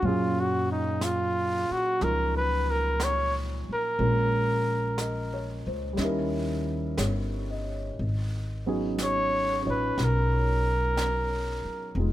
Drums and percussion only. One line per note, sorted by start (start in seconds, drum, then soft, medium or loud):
0.03 brush sweep soft
1.01 brush sweep soft
1.01 snare soft
1.01 hi-hat pedal soft
2.01 brush sweep soft
2.01 snare soft
3.00 brush sweep soft
3.00 snare soft
3.00 hi-hat pedal soft
3.99 brush sweep soft
4.98 brush sweep soft
4.98 snare soft
4.98 hi-hat pedal soft
5.97 brush sweep soft
5.97 snare soft
6.98 brush sweep soft
6.98 snare soft
6.98 hi-hat pedal soft
7.98 brush sweep soft
8.98 brush sweep soft
8.98 snare soft
8.98 hi-hat pedal soft
9.98 brush sweep soft
9.98 snare soft
10.97 brush sweep soft
10.97 snare soft
10.97 hi-hat pedal soft
11.97 brush sweep soft